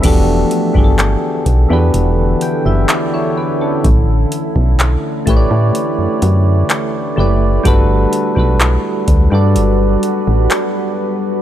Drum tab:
CC |x---------------|----------------|----------------|
HH |x-x-x-x-x-x-x---|x-x-x-x-x-x-x---|x-x-x-x-x-x-x---|
CP |----x-------x---|----x-------x---|----x-------x---|
BD |o--o--o---------|o--o--o---------|o--o--o---------|